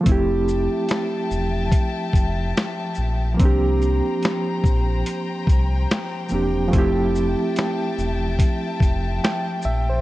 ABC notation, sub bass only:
X:1
M:4/4
L:1/16
Q:"Swing 16ths" 1/4=72
K:F
V:1 name="Sub bass" clef=bass
F,,,3 z3 E,,,2 z2 F,,,2 z2 B,,,2 | C,,3 z3 B,,,2 z2 C,,2 z2 E,,,2 | F,,,3 z3 E,,,2 z2 F,,,2 z2 B,,,2 |]